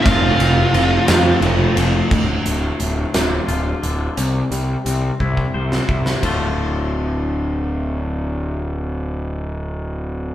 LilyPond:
<<
  \new Staff \with { instrumentName = "Lead electric guitar" } { \time 6/8 \key d \minor \tempo 4. = 58 <f' f''>2 r4 | r2. | r2. | r2. |
r2. | }
  \new Staff \with { instrumentName = "Distorted electric guitar" } { \time 6/8 \key d \minor <f, c f a c' f'>8 <f a c' f'>8 <f a c' f'>8 <f a c' f'>8 <f a c' f'>8 <f a c' f'>8 | r2. | r2. | r2. |
r2. | }
  \new Staff \with { instrumentName = "Clean electric guitar" } { \clef bass \time 6/8 \key d \minor r2. | d,8 a,8 a,8 d8 f'8 d8 | c8 g8 c'8 e'8 c''8 e'8 | <d, a, d a f'>2.~ |
<d, a, d a f'>2. | }
  \new Staff \with { instrumentName = "Picked electric bass" } { \clef bass \time 6/8 \key d \minor f,,8 f,,8 f,,8 f,8 f,,8 f,,8 | d,,8 d,,8 d,,8 d,,8 d,,8 d,,8 | c,8 c,8 c,8 c,8 c,8 c,8 | d,,2.~ |
d,,2. | }
  \new DrumStaff \with { instrumentName = "Drums" } \drummode { \time 6/8 <bd cymr>8 cymr8 cymr8 <cymr sn>8 cymr8 cymr8 | <cymc bd>8 hh8 hh8 <hh sn>8 hh8 hh8 | hh8 hh8 hh8 bd16 bd8 sn16 bd16 sn16 | <bd cymr>4. r4. |
r4. r4. | }
>>